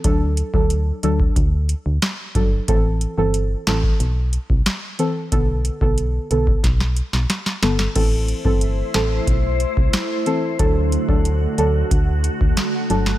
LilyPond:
<<
  \new Staff \with { instrumentName = "Ambient pad" } { \time 4/4 \key a \dorian \tempo 4 = 91 r1 | r1 | r1 | <a e' c''>1 |
<d fis'>1 | }
  \new Staff \with { instrumentName = "Synth stab" } { \time 4/4 \key a \dorian <fis d' a'>8. <fis d' a'>8. <fis d' a'>8 r4. <fis d' a'>16 r16 | <e c' a'>8. <e c' a'>8. <e c' a'>8 r4. <e c' a'>16 r16 | <d b a'>8. <d b a'>8. <d b a'>8 r4. <d b a'>16 r16 | <e c' a'>8. <e c' a'>8. <e c' a'>8 r4. <e c' a'>16 r16 |
<fis d' a'>8. <fis d' a'>8. <fis d' a'>8 r4. <fis d' a'>16 r16 | }
  \new Staff \with { instrumentName = "FM bass" } { \clef bass \time 4/4 \key a \dorian d,8. d,8. d,8 d,8. d,16 r8 g,,8 | a,,8. g,,8. a,,8 b,,8. c,16 r4 | b,,8. b,,8. b,,8 b,,8. b,,16 r8 g,,8 | a,,8. g,,8. a,,8 b,,8. c,16 r4 |
d,8. d,8. d,8 d,8. d,16 r8 g,,8 | }
  \new DrumStaff \with { instrumentName = "Drums" } \drummode { \time 4/4 <hh bd>8 hh16 bd16 hh8 hh16 bd16 <hh bd>8 hh8 <hh sn>8 <hh bd>8 | <hh bd>8 hh8 hh8 <hh sn>16 bd16 hh8 hh16 bd16 <hh sn>8 hh8 | <hh bd>8 hh16 bd16 hh8 hh16 bd16 <hh bd sn>16 sn16 hh16 sn16 <hh sn>16 sn16 <hh sn>16 sn16 | <cymc hh bd>8 hh16 bd16 hh8 <hh sn>8 <hh bd>8 hh16 bd16 <hh sn>8 hh8 |
<hh bd>8 hh16 bd16 hh8 hh8 <hh bd>8 hh16 bd16 <hh sn>8 hh16 sn16 | }
>>